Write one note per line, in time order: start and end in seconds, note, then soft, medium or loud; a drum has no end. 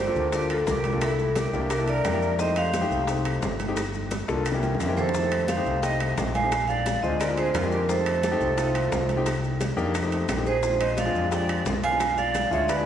0.00 0.30 G4 medium
0.00 0.30 C5 medium
0.07 0.25 A#3 medium
0.07 0.25 D4 medium
0.07 0.25 F4 medium
0.07 0.25 A4 medium
0.15 0.63 D2 medium
0.15 high conga soft
0.15 maracas soft
0.32 0.75 A#3 medium
0.32 0.75 D4 medium
0.32 0.75 F4 medium
0.32 0.50 G4 medium
0.32 0.75 A4 medium
0.32 0.50 A#4 medium
0.32 high bongo medium
0.32 high conga soft
0.32 high timbale medium
0.32 maracas medium
0.50 0.57 F4 medium
0.50 0.59 A4 medium
0.50 high conga soft
0.50 high timbale medium
0.50 claves medium
0.50 maracas soft
0.67 1.47 C2 medium
0.67 1.00 G4 medium
0.67 1.04 A#4 medium
0.67 high bongo medium
0.67 low bongo medium
0.67 high conga medium
0.67 low timbale medium
0.67 maracas medium
0.84 high conga medium
0.84 high timbale medium
0.84 maracas soft
0.93 1.01 A#3 medium
0.93 1.02 D4 medium
0.93 1.01 F4 medium
0.93 1.02 A4 medium
1.01 1.34 E4 medium
1.01 1.35 A4 medium
1.01 high bongo medium
1.01 high conga soft
1.01 high timbale medium
1.01 claves medium
1.01 maracas medium
1.19 high bongo soft
1.19 high conga soft
1.19 maracas soft
1.35 1.69 G4 medium
1.35 1.71 A#4 medium
1.35 high bongo medium
1.35 high conga medium
1.35 high timbale medium
1.35 low timbale medium
1.35 maracas medium
1.53 2.01 C2 loud
1.53 1.71 A#3 medium
1.53 1.71 D4 medium
1.53 1.71 E4 medium
1.53 1.71 G4 medium
1.53 high bongo soft
1.53 high conga soft
1.53 maracas soft
1.70 1.87 G4 medium
1.70 1.87 A#4 medium
1.70 high bongo medium
1.70 high conga soft
1.70 high timbale medium
1.70 claves medium
1.70 maracas medium
1.78 2.03 A#3 medium
1.78 2.03 D4 medium
1.78 2.03 E4 medium
1.78 2.03 A4 medium
1.88 2.36 A#4 medium
1.88 2.37 D5 loud
1.88 high conga soft
1.88 high timbale medium
1.88 maracas soft
2.04 2.85 F2 loud
2.04 high bongo medium
2.04 low bongo medium
2.04 high conga medium
2.04 high timbale medium
2.04 low timbale medium
2.04 claves medium
2.04 maracas medium
2.13 2.31 A#3 medium
2.13 2.31 D4 medium
2.13 2.31 E4 medium
2.13 2.32 G4 medium
2.22 high bongo soft
2.22 high conga soft
2.22 maracas soft
2.38 2.69 A3 medium
2.38 2.69 C4 medium
2.38 2.69 D#4 medium
2.38 2.69 G4 medium
2.38 2.55 C5 medium
2.38 2.56 D#5 loud
2.38 high bongo medium
2.38 high conga soft
2.38 maracas medium
2.56 3.04 C5 medium
2.56 3.05 F5 loud
2.56 high conga soft
2.56 high timbale medium
2.56 claves medium
2.56 maracas soft
2.74 high bongo medium
2.74 high conga medium
2.74 high timbale medium
2.74 low timbale medium
2.74 maracas medium
2.81 3.00 A3 medium
2.81 3.00 C4 medium
2.81 3.00 D#4 medium
2.81 3.00 G4 medium
2.90 3.38 C2 medium
2.90 high conga soft
2.90 maracas soft
3.07 3.50 A3 medium
3.07 3.50 C4 medium
3.07 3.50 D#4 medium
3.07 3.50 G4 medium
3.07 high bongo medium
3.07 high conga soft
3.07 high timbale medium
3.07 maracas medium
3.25 high conga soft
3.25 high timbale medium
3.25 claves medium
3.25 maracas soft
3.42 4.22 G1 medium
3.42 high bongo medium
3.42 low bongo medium
3.42 high conga medium
3.42 low timbale medium
3.42 maracas medium
3.59 high conga medium
3.59 high timbale medium
3.59 maracas soft
3.68 3.77 A3 medium
3.68 3.77 C4 medium
3.68 3.77 D#4 medium
3.68 3.77 G4 medium
3.77 high bongo medium
3.77 high conga soft
3.77 high timbale medium
3.77 claves medium
3.77 maracas medium
3.94 high bongo soft
3.94 high conga soft
3.94 maracas soft
4.11 high bongo medium
4.11 high conga medium
4.11 high timbale medium
4.11 low timbale medium
4.11 maracas medium
4.28 4.76 C2 medium
4.28 4.45 A#3 medium
4.28 4.45 D4 medium
4.28 4.46 F4 medium
4.28 4.45 A4 loud
4.28 high bongo medium
4.28 high conga soft
4.28 maracas soft
4.45 high conga soft
4.45 high timbale medium
4.45 claves medium
4.45 maracas medium
4.52 4.78 A#3 medium
4.52 4.78 C#4 medium
4.52 4.78 E4 medium
4.52 4.78 G4 medium
4.52 low bongo medium
4.63 4.79 G5 medium
4.63 high conga medium
4.63 high timbale medium
4.63 maracas soft
4.75 low bongo medium
4.80 5.60 F2 medium
4.80 4.88 E5 medium
4.80 low timbale medium
4.80 claves medium
4.80 maracas medium
4.86 5.07 A#3 medium
4.86 5.07 C#4 medium
4.86 5.07 E4 medium
4.86 5.07 G4 medium
4.86 5.13 C5 medium
4.86 low bongo medium
4.97 5.45 A4 medium
4.97 5.45 C5 medium
4.97 low conga medium
4.97 low timbale medium
4.97 maracas soft
5.09 low bongo medium
5.14 5.45 A3 medium
5.14 5.44 C4 medium
5.14 5.45 D#4 medium
5.14 5.44 G4 medium
5.14 high bongo medium
5.14 high conga soft
5.14 maracas medium
5.32 high conga soft
5.32 high timbale medium
5.32 claves medium
5.32 maracas soft
5.48 5.80 C5 medium
5.48 5.84 F5 loud
5.48 high bongo medium
5.48 high conga medium
5.48 high timbale medium
5.48 low timbale medium
5.48 maracas medium
5.57 5.75 A3 medium
5.57 5.75 C4 medium
5.57 5.75 D#4 medium
5.57 5.75 G4 medium
5.65 6.13 C2 medium
5.65 maracas soft
5.83 6.25 A3 medium
5.83 6.25 C4 medium
5.83 6.25 D#4 medium
5.83 6.25 G4 medium
5.83 6.15 D#5 medium
5.83 6.15 G5 loud
5.83 high bongo medium
5.83 high conga soft
5.83 high timbale medium
5.83 maracas medium
6.00 high conga soft
6.00 high timbale medium
6.00 claves medium
6.00 maracas soft
6.17 6.97 A#1 medium
6.17 high bongo medium
6.17 low bongo medium
6.17 high conga medium
6.17 low timbale medium
6.17 maracas medium
6.34 6.66 F5 medium
6.34 6.66 G#5 loud
6.34 high conga medium
6.34 high timbale medium
6.34 maracas soft
6.43 6.52 A3 medium
6.43 6.52 C4 medium
6.43 6.52 D#4 medium
6.43 6.52 G4 medium
6.52 high bongo medium
6.52 high conga soft
6.52 high timbale medium
6.52 claves medium
6.52 maracas medium
6.68 7.01 D5 medium
6.68 7.04 F5 loud
6.68 high bongo soft
6.68 high conga soft
6.68 maracas soft
6.86 high bongo medium
6.86 high conga medium
6.86 high timbale medium
6.86 low timbale medium
6.86 maracas medium
7.02 7.51 D2 medium
7.02 7.21 G#3 medium
7.02 7.21 C4 medium
7.02 7.21 D4 medium
7.02 7.21 F4 medium
7.02 7.19 C5 medium
7.02 7.19 D#5 medium
7.02 high bongo soft
7.02 high conga soft
7.02 maracas soft
7.20 7.36 A#4 medium
7.20 7.36 D5 medium
7.20 high bongo medium
7.20 high conga soft
7.20 high timbale medium
7.20 claves medium
7.20 maracas medium
7.29 7.53 G#3 medium
7.29 7.53 C4 medium
7.29 7.53 D4 medium
7.29 7.53 F4 medium
7.36 7.53 G#4 medium
7.36 7.53 C5 medium
7.36 high conga soft
7.36 high timbale medium
7.36 maracas soft
7.54 8.35 F2 medium
7.54 7.70 F4 medium
7.54 7.70 A#4 medium
7.54 high bongo medium
7.54 low bongo medium
7.54 high conga medium
7.54 high timbale medium
7.54 low timbale medium
7.54 claves medium
7.54 maracas medium
7.63 7.81 G#3 medium
7.63 7.81 C4 medium
7.63 7.81 D4 medium
7.63 7.81 G4 medium
7.71 7.88 G4 medium
7.71 7.88 A#4 medium
7.71 high bongo soft
7.71 high conga soft
7.71 maracas soft
7.89 8.19 A3 medium
7.89 8.19 C4 medium
7.89 8.19 D#4 medium
7.89 8.19 G4 medium
7.89 9.22 A4 medium
7.89 9.22 C5 medium
7.89 high bongo medium
7.89 high conga soft
7.89 maracas medium
8.06 high conga soft
8.06 high timbale medium
8.06 claves medium
8.06 maracas soft
8.23 high bongo medium
8.23 high conga loud
8.23 high timbale medium
8.23 low timbale medium
8.23 maracas medium
8.31 8.50 A3 medium
8.31 8.50 C4 medium
8.31 8.50 D#4 medium
8.31 8.50 G4 loud
8.40 8.88 C2 medium
8.40 high conga soft
8.40 maracas soft
8.57 8.99 A3 medium
8.57 8.99 C4 medium
8.57 8.99 D#4 medium
8.57 8.99 F4 medium
8.57 high bongo medium
8.57 high conga soft
8.57 high timbale medium
8.57 maracas medium
8.75 high conga soft
8.75 high timbale medium
8.75 claves medium
8.75 maracas soft
8.92 9.72 C2 medium
8.92 high bongo medium
8.92 low bongo medium
8.92 high conga medium
8.92 low timbale medium
8.92 maracas medium
9.09 high conga medium
9.09 high timbale medium
9.09 maracas soft
9.17 9.26 A3 medium
9.17 9.26 C4 medium
9.17 9.26 D#4 medium
9.17 9.26 G4 medium
9.26 high bongo medium
9.26 high conga soft
9.26 high timbale medium
9.26 claves medium
9.26 maracas medium
9.43 high bongo soft
9.43 high conga soft
9.43 maracas soft
9.60 high bongo medium
9.60 high conga loud
9.60 high timbale medium
9.60 low timbale medium
9.60 maracas medium
9.77 10.25 F2 medium
9.77 9.94 A#3 loud
9.77 9.94 D4 medium
9.77 9.94 D#4 medium
9.77 9.94 G4 loud
9.77 high bongo soft
9.77 high conga soft
9.77 maracas soft
9.95 high bongo medium
9.95 high conga soft
9.95 high timbale medium
9.95 claves medium
9.95 maracas medium
10.02 10.27 A3 medium
10.02 10.27 C4 medium
10.02 10.27 D#4 medium
10.02 10.27 G4 medium
10.12 high conga soft
10.12 high timbale medium
10.12 maracas soft
10.29 11.09 A#1 loud
10.29 high bongo medium
10.29 low bongo medium
10.29 high conga medium
10.29 high timbale medium
10.29 low timbale medium
10.29 claves medium
10.29 maracas medium
10.36 10.55 A3 medium
10.36 10.55 C4 medium
10.36 10.55 D#4 medium
10.36 10.55 G4 medium
10.46 10.78 G#4 medium
10.46 10.82 C5 medium
10.46 high bongo soft
10.46 high conga soft
10.46 maracas soft
10.62 10.93 G#3 medium
10.62 10.93 C4 medium
10.62 10.93 D4 medium
10.62 10.93 F4 medium
10.62 high bongo medium
10.62 high conga soft
10.62 maracas medium
10.80 10.96 C5 medium
10.80 10.96 D#5 medium
10.80 high conga soft
10.80 high timbale loud
10.80 claves medium
10.80 maracas soft
10.97 11.30 D5 medium
10.97 11.30 F5 medium
10.97 high bongo medium
10.97 high conga medium
10.97 high timbale medium
10.97 low timbale medium
10.97 maracas medium
11.05 11.24 G#3 medium
11.05 11.24 C4 medium
11.05 11.24 D4 medium
11.05 11.24 F4 medium
11.15 11.63 F2 medium
11.15 high conga soft
11.15 maracas soft
11.31 11.74 G#3 medium
11.31 11.73 C4 medium
11.31 11.73 D4 medium
11.31 11.73 G4 medium
11.31 11.64 D5 medium
11.31 11.64 G5 loud
11.31 high bongo medium
11.31 high conga soft
11.31 high timbale medium
11.31 maracas medium
11.49 high conga soft
11.49 high timbale medium
11.49 claves medium
11.49 maracas soft
11.66 12.46 B1 medium
11.66 high bongo medium
11.66 low bongo medium
11.66 high conga medium
11.66 low timbale medium
11.66 maracas medium
11.83 12.15 F5 loud
11.83 12.16 G#5 loud
11.83 high conga medium
11.83 high timbale medium
11.83 maracas soft
11.91 12.00 G#3 medium
11.91 12.00 C4 medium
11.91 12.00 D4 medium
11.91 12.00 F4 medium
12.00 high bongo medium
12.00 high conga soft
12.00 high timbale medium
12.00 claves medium
12.00 maracas medium
12.18 12.50 D5 medium
12.18 12.50 F5 loud
12.18 high bongo soft
12.18 high conga soft
12.18 maracas soft
12.35 high bongo medium
12.35 high conga medium
12.35 high timbale medium
12.35 low timbale medium
12.35 maracas medium
12.51 12.86 D2 medium
12.51 12.69 G#3 medium
12.51 12.69 C#4 medium
12.51 12.69 D4 medium
12.51 12.69 F4 medium
12.51 12.68 C#5 medium
12.51 12.68 E5 medium
12.51 high bongo soft
12.51 high conga soft
12.51 maracas soft
12.68 12.85 B4 medium
12.68 12.85 D5 medium
12.68 high bongo medium
12.68 high conga soft
12.68 high timbale medium
12.68 claves medium
12.68 maracas medium
12.76 12.86 G#3 medium
12.76 12.86 C#4 medium
12.76 12.86 D4 medium
12.76 12.86 E4 medium